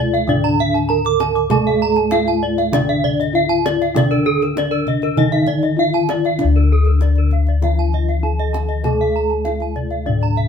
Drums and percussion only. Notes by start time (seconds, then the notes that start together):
0.14 kendang slap
0.29 kendang low
0.44 kendang slap
0.59 kendang low
0.75 kendang slap
1.05 kendang slap
1.20 kendang high
1.36 kendang slap
1.50 kendang high, kendang low
1.96 kendang slap
2.11 kendang high
2.27 kendang slap
2.58 kendang slap
2.73 kendang high, kendang low
2.89 kendang slap
3.04 kendang low
3.21 kendang slap
3.51 kendang slap
3.66 kendang high
3.82 kendang slap
3.96 kendang high, kendang low
4.11 kendang slap
4.42 kendang slap
4.57 kendang high
4.72 kendang slap
4.87 kendang low
5.02 kendang slap
5.17 kendang low
5.32 kendang slap
5.47 kendang low
5.63 kendang slap
5.93 kendang slap
6.09 kendang high
6.25 kendang slap
6.39 kendang high, kendang low
6.85 kendang slap
7.01 kendang high
7.16 kendang slap
7.31 kendang low
7.47 kendang slap
7.62 kendang high, kendang low
7.93 kendang low
8.08 kendang slap
8.39 kendang slap
8.54 kendang high
8.69 kendang slap
8.84 kendang high, kendang low
9.30 kendang slap
9.45 kendang high
9.60 kendang slap
9.76 kendang low
9.90 kendang slap
10.06 kendang low
10.21 kendang slap
10.36 kendang low